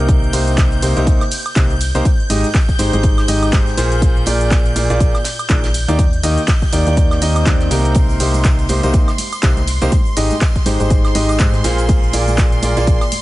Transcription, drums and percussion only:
0.09 kick, closed hi-hat, cabasa
0.23 cabasa
0.33 closed hi-hat, open hi-hat, ride, cabasa
0.48 closed hi-hat, cabasa
0.58 kick, snare, clap, closed hi-hat, cabasa
0.72 closed hi-hat, cabasa
0.82 closed hi-hat, open hi-hat, ride, cabasa
0.97 closed hi-hat, cabasa
1.07 kick, closed hi-hat, cabasa
1.21 snare, closed hi-hat, cabasa, high woodblock
1.31 closed hi-hat, open hi-hat, ride, cabasa
1.46 closed hi-hat, cabasa, high woodblock
1.56 kick, snare, clap, closed hi-hat, cabasa
1.70 closed hi-hat, cabasa
1.81 closed hi-hat, open hi-hat, ride, cabasa
1.95 snare, closed hi-hat, cabasa
2.05 kick, closed hi-hat, cabasa
2.20 cabasa
2.30 closed hi-hat, open hi-hat, ride, cabasa
2.44 closed hi-hat, cabasa
2.54 kick, snare, clap, closed hi-hat, open hi-hat, cabasa
2.69 kick, closed hi-hat, cabasa
2.79 snare, closed hi-hat, open hi-hat, ride, cabasa
2.93 closed hi-hat, cabasa
3.03 kick, closed hi-hat, cabasa
3.18 snare, closed hi-hat, cabasa, high woodblock
3.28 closed hi-hat, open hi-hat, ride, cabasa
3.43 closed hi-hat, cabasa, high woodblock
3.53 kick, snare, clap, closed hi-hat, cabasa
3.67 snare, closed hi-hat, cabasa
3.77 snare, closed hi-hat, open hi-hat, ride, cabasa
3.92 closed hi-hat, cabasa
4.02 kick, closed hi-hat, cabasa
4.17 cabasa
4.26 closed hi-hat, open hi-hat, ride, cabasa
4.41 closed hi-hat, cabasa
4.51 kick, snare, clap, closed hi-hat, cabasa
4.66 closed hi-hat, cabasa
4.76 closed hi-hat, open hi-hat, ride, cabasa
4.90 closed hi-hat, cabasa
5.00 kick, closed hi-hat, cabasa
5.15 snare, closed hi-hat, cabasa, high woodblock
5.24 snare, closed hi-hat, open hi-hat, ride, cabasa
5.39 closed hi-hat, cabasa, high woodblock
5.49 kick, clap, closed hi-hat, cabasa
5.64 snare, closed hi-hat, cabasa
5.74 open hi-hat, ride, cabasa
5.88 closed hi-hat, cabasa
5.99 kick, closed hi-hat, cabasa
6.13 closed hi-hat, cabasa
6.23 closed hi-hat, open hi-hat, ride, cabasa
6.38 closed hi-hat, cabasa
6.47 kick, snare, clap, closed hi-hat, open hi-hat, cabasa
6.62 kick, closed hi-hat, cabasa
6.73 snare, closed hi-hat, open hi-hat, ride, cabasa
6.87 closed hi-hat, cabasa
6.97 kick, closed hi-hat, cabasa
7.11 snare, closed hi-hat, cabasa, high woodblock
7.21 closed hi-hat, open hi-hat, ride, cabasa
7.36 closed hi-hat, cabasa, high woodblock
7.46 kick, snare, clap, closed hi-hat, cabasa
7.60 snare, closed hi-hat, cabasa
7.71 snare, closed hi-hat, open hi-hat, ride, cabasa
7.85 closed hi-hat, cabasa
7.95 kick, closed hi-hat, tambourine, high conga, cabasa
8.09 tambourine, cabasa
8.20 closed hi-hat, open hi-hat, ride, cabasa
8.34 closed hi-hat, tambourine, high conga, cabasa
8.44 kick, snare, clap, closed hi-hat, tambourine, cabasa
8.59 closed hi-hat, tambourine, cabasa
8.69 closed hi-hat, open hi-hat, ride, high conga, cabasa
8.83 closed hi-hat, tambourine, cabasa
8.94 kick, closed hi-hat, tambourine, cabasa
9.08 snare, closed hi-hat, tambourine, cabasa, high woodblock
9.18 closed hi-hat, open hi-hat, ride, high conga, cabasa
9.32 closed hi-hat, tambourine, cabasa, high woodblock
9.43 kick, snare, clap, closed hi-hat, tambourine, cabasa
9.57 closed hi-hat, tambourine, high conga, cabasa
9.67 closed hi-hat, open hi-hat, ride, cabasa
9.81 snare, closed hi-hat, tambourine, cabasa
9.92 kick, closed hi-hat, tambourine, high conga, cabasa
10.05 tambourine, cabasa
10.17 closed hi-hat, open hi-hat, ride, cabasa
10.30 closed hi-hat, tambourine, high conga, cabasa
10.41 kick, snare, clap, closed hi-hat, open hi-hat, tambourine, cabasa
10.56 kick, closed hi-hat, tambourine, cabasa
10.66 snare, closed hi-hat, open hi-hat, ride, high conga, cabasa
10.80 closed hi-hat, tambourine, cabasa
10.90 kick, closed hi-hat, tambourine, cabasa
11.05 snare, closed hi-hat, tambourine, cabasa, high woodblock
11.15 closed hi-hat, open hi-hat, ride, high conga, cabasa
11.29 closed hi-hat, tambourine, cabasa, high woodblock
11.39 kick, snare, clap, closed hi-hat, tambourine, cabasa
11.53 snare, closed hi-hat, tambourine, high conga, cabasa
11.64 snare, closed hi-hat, open hi-hat, ride, cabasa
11.78 closed hi-hat, tambourine, cabasa
11.89 kick, closed hi-hat, tambourine, high conga, cabasa
12.03 tambourine, cabasa
12.13 closed hi-hat, open hi-hat, ride, cabasa
12.28 closed hi-hat, tambourine, high conga, cabasa
12.37 kick, snare, clap, closed hi-hat, tambourine, cabasa
12.52 closed hi-hat, tambourine, cabasa
12.62 closed hi-hat, open hi-hat, ride, high conga, cabasa
12.77 closed hi-hat, tambourine, cabasa
12.87 kick, closed hi-hat, tambourine, cabasa
13.01 snare, closed hi-hat, tambourine, cabasa, high woodblock
13.12 closed hi-hat, open hi-hat, ride, high conga, cabasa

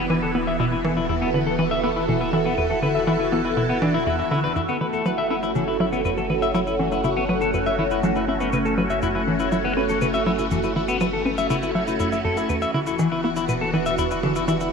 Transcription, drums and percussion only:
4.56 cabasa
4.68 cabasa
4.93 cabasa
5.06 cabasa
5.43 cabasa
5.55 cabasa
5.93 cabasa
6.05 cabasa
6.17 cabasa
6.30 percussion blips
6.42 cabasa
6.55 cabasa
6.67 cabasa
6.92 percussion blips, cabasa
7.04 cabasa
7.41 cabasa
7.54 cabasa
7.66 cabasa
7.91 cabasa
8.03 cabasa
8.16 percussion blips, cabasa
8.40 percussion blips, cabasa
8.53 cabasa
8.65 cabasa
8.90 cabasa
9.02 cabasa
9.40 cabasa
9.52 cabasa
9.89 cabasa
10.01 cabasa
10.14 cabasa
10.26 percussion blips
10.39 cabasa
10.51 cabasa
10.63 cabasa
10.88 percussion blips, cabasa
11.01 cabasa
11.38 cabasa
11.50 cabasa
11.63 cabasa
11.88 cabasa
12.00 cabasa
12.12 percussion blips, cabasa
12.37 percussion blips, cabasa
12.49 cabasa
12.62 cabasa
12.87 cabasa
12.99 cabasa
13.36 cabasa
13.49 cabasa
13.86 cabasa
13.98 cabasa
14.11 cabasa
14.23 percussion blips
14.36 cabasa
14.48 cabasa
14.61 cabasa

